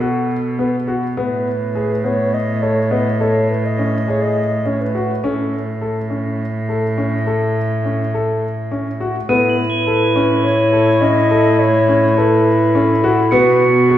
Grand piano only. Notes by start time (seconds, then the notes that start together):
0.01 F#4
0.59 B3
0.87 F#4
1.17 B3
1.75 G#4
2.04 B3
2.62 A4
2.91 B3
3.20 A4
3.79 C#4
4.08 G#4
4.66 C#4
4.95 F#4
5.24 C#4
5.81 A4
6.10 C#4
6.69 A4
6.98 C#4
7.27 A4
7.85 C#4
8.14 A4
8.71 C#4
9.00 F#4
9.29 B3
9.87 A4
10.16 C#4
10.73 A4
11.01 C#4
11.31 A4
11.88 C#4
12.17 A4
12.75 C#4
13.04 F#4
13.32 B3
13.90 F#4